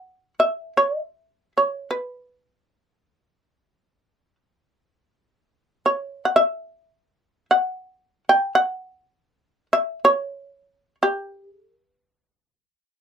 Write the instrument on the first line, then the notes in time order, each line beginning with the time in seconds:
shamisen
Already playing: F#5
0.40 E5
0.77 C#5
1.01 E5
1.58 C#5
1.91 B4
5.86 C#5
6.25 F#5
6.36 E5
7.51 F#5
8.29 G5
8.55 F#5
9.73 E5
10.05 C#5
11.03 G4
11.43 G#4
11.59 A4
11.74 A#4
11.90 B4